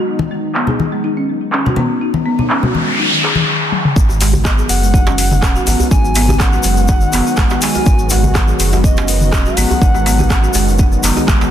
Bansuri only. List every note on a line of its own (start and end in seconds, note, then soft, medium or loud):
4.45 4.51 D#5 medium
4.69 5.87 F#5 loud
5.91 6.41 G#5 loud
6.40 7.63 F#5 loud
7.62 8.12 G#5 loud
8.10 8.57 F#5 loud
8.84 9.59 D#5 loud
9.57 11.04 F#5 loud